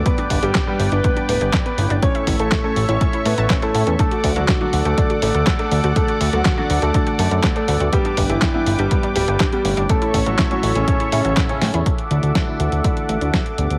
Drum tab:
HH |xxoxx-oxxxoxxxox|xxoxx-oxxxoxxxox|xxoxx-oxxxoxxxox|xxoxx-oxxxoxxxox|
CP |----x-------x---|----x-------x---|----x-------x---|----x-------x---|
SD |----o-------o---|----o-------o---|----o-------o---|----o-------o---|
BD |o-o-o---o---o---|o-o-o---o---o---|o-o-o---o---o---|o---o---o---o---|

HH |xxoxx-oxxxoxxxox|xxoxxxoxxxoxxxox|xxxxx-xxxxxxxxxx|
CP |----x-------x---|----x-------x---|----------------|
SD |----o-------o---|----o-------o-o-|----o-------o---|
BD |o-o-o---o---o---|o-o-o---o---o---|o---o---o---o---|